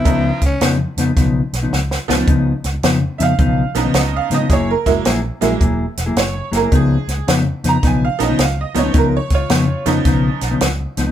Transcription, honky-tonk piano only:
0.05 0.38 F3 medium
0.05 0.38 B3 soft
0.05 0.38 C#4 soft
0.05 0.39 D#4 medium
2.08 2.26 F3 medium
2.08 2.26 B3 medium
2.08 2.26 C#4 medium
2.08 2.26 F4 medium
3.18 3.23 E5 medium
3.23 3.94 F5 loud
3.75 4.46 F3 medium
3.75 4.46 B3 medium
3.75 4.46 C#4 medium
3.75 4.47 D#4 medium
3.98 4.14 D#5 medium
4.16 4.33 F5 medium
4.34 4.51 D#5 loud
4.53 4.70 C#5 loud
4.71 4.99 A#4 medium
4.86 5.04 F#3 medium
4.86 5.04 G#3 medium
4.86 5.04 A#3 medium
4.86 5.04 E4 medium
5.41 5.59 F#3 medium
5.41 5.59 G#3 medium
5.41 5.59 A#3 medium
5.41 5.59 E4 medium
6.19 6.54 C#5 loud
6.56 6.73 A#4 loud
6.75 7.28 G#4 loud
7.69 7.85 A#5 medium
7.87 8.03 G#5 medium
8.05 8.21 F5 medium
8.19 8.36 F3 medium
8.19 8.37 B3 medium
8.19 8.37 C#4 medium
8.19 8.37 D#4 medium
8.23 8.40 D#5 medium
8.42 8.58 F5 medium
8.61 8.77 D#5 medium
8.74 8.92 F3 medium
8.74 8.92 B3 medium
8.74 8.92 C#4 medium
8.74 8.92 D#4 medium
8.79 8.95 C#5 medium
8.98 9.14 A#4 loud
9.17 9.33 C#5 medium
9.34 9.85 F4 medium
9.34 9.87 C#5 medium
9.86 10.57 F3 medium
9.86 10.57 B3 medium
9.86 10.57 C#4 medium
9.86 10.57 D#4 medium

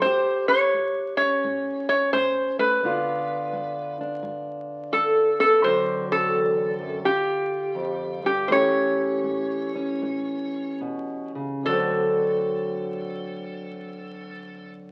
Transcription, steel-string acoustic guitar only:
0.04 0.69 A2 medium
0.04 2.82 G4 medium
0.74 1.39 A2 medium
1.22 2.82 C#4 medium
1.45 2.09 A2 medium
2.14 2.79 A2 medium
2.59 2.80 A3 medium
2.83 3.49 G2 medium
2.83 5.62 D3 medium
2.83 5.38 B3 medium
2.83 4.00 D4 medium
2.83 5.62 F4 medium
3.53 4.19 G2 medium
4.01 5.62 D4 medium
4.23 4.89 G2 medium
4.92 5.59 G2 medium
5.40 5.61 B3 medium
5.63 6.29 D2 medium
5.63 8.49 D3 medium
5.63 7.06 F#3 medium
5.63 7.03 C4 medium
5.63 7.04 F#4 medium
6.34 6.79 E2 medium
6.80 7.04 F#2 medium
7.04 7.72 G2 medium
7.04 8.47 F4 medium
7.75 8.23 F2 medium
8.24 8.50 G2 medium
8.49 9.20 A2 medium
8.49 11.60 E3 medium
8.49 11.61 A3 medium
8.49 9.74 C#4 medium
8.49 11.61 G4 medium
9.24 9.97 A2 medium
9.76 11.60 C#4 medium
10.02 10.76 A2 medium
10.81 11.35 B2 medium
11.35 11.64 C#3 medium
11.63 14.92 D2 medium
11.63 14.92 D3 medium
11.67 14.92 F#3 medium
11.67 14.92 C4 medium
11.67 14.92 F#4 medium

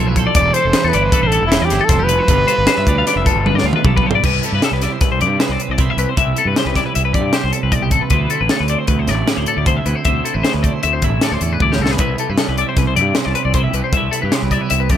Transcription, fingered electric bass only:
0.00 0.26 B1 loud
0.35 0.50 E1 loud
0.65 0.72 E1 medium
0.84 0.92 E2 medium
0.94 1.08 G1 loud
1.23 1.38 A1 loud
1.42 1.57 E1 medium
1.62 1.69 E2 medium
1.71 1.79 G1 medium
1.89 2.19 F1 loud
2.28 2.43 G1 loud
2.58 2.66 G1 loud
2.78 2.85 G2 medium
2.87 3.02 D2 loud
3.16 3.31 F1 medium
3.35 3.50 G1 medium
3.54 3.62 G2 medium
3.63 3.71 D2 loud
3.84 4.14 B1 loud
4.24 4.39 C2 medium
4.52 4.60 G2 medium
4.71 4.86 C2 medium
5.01 5.23 C2 medium
5.21 5.36 G2 medium
5.49 5.56 C2 medium
5.69 5.91 C2 medium
5.97 6.05 C2 medium
6.18 6.32 C2 medium
6.45 6.53 G2 medium
6.65 6.80 C2 medium
6.96 7.16 C2 medium
7.15 7.29 G2 medium
7.44 7.51 C2 medium
7.63 7.92 C2 medium
7.92 7.99 A1 medium
8.11 8.26 D2 medium
8.41 8.48 A1 medium
8.60 8.75 D2 medium
8.88 9.09 D2 medium
9.08 9.23 A1 medium
9.37 9.45 D2 medium
9.57 9.79 D2 medium
9.86 9.93 D2 medium
10.06 10.20 D2 medium
10.35 10.42 A1 medium
10.54 10.69 D2 medium
10.84 11.04 D2 medium
11.03 11.17 A1 medium
11.31 11.39 D2 medium
11.41 11.59 E2 medium
11.61 11.78 D2 medium
11.79 11.97 C2 medium
11.99 12.14 C2 medium
12.29 12.36 G2 medium
12.48 12.63 C2 medium
12.77 12.98 C2 medium
12.96 13.11 G2 medium
13.26 13.33 C2 medium
13.45 13.67 C2 medium
13.73 13.81 C2 medium
13.93 14.08 C2 medium
14.23 14.30 G2 medium
14.42 14.57 C2 medium
14.71 14.92 C2 medium
14.91 14.97 G2 medium

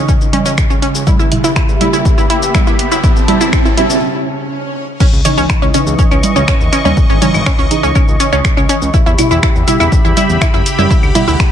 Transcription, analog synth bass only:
0.21 0.29 C#2 medium
0.46 0.54 C#2 medium
0.70 0.78 C#2 medium
0.95 1.03 C#2 medium
1.19 1.28 E2 medium
1.44 1.52 E2 medium
1.69 1.77 E2 medium
1.93 2.01 E2 medium
2.18 2.26 E2 medium
2.42 2.50 E2 medium
2.67 2.75 F#2 medium
2.92 3.00 F#2 medium
3.16 3.24 D2 medium
3.41 3.49 D2 medium
3.65 3.73 E2 medium
3.90 3.98 E2 medium
5.13 5.21 C#2 medium
5.38 5.46 C#2 medium
5.62 5.70 C#2 medium
5.87 5.95 C#2 medium
6.11 6.19 C#2 medium
6.36 6.44 C#2 medium
6.60 6.69 D#2 medium
6.85 6.93 D#2 medium
7.10 7.18 G#1 medium
7.34 7.42 G#1 medium
7.59 7.67 C#2 medium
7.83 7.91 C#2 medium
8.08 8.16 C#2 medium
8.33 8.41 C#2 medium
8.57 8.65 C#2 medium
8.82 8.90 C#2 medium
9.06 9.14 E2 medium
9.31 9.39 E2 medium
9.55 9.64 E2 medium
9.80 9.88 E2 medium
10.05 10.13 E2 medium
10.29 10.37 E2 medium
10.54 10.62 F#2 medium
10.78 10.86 F#2 medium
11.03 11.11 D2 medium
11.28 11.36 D2 medium

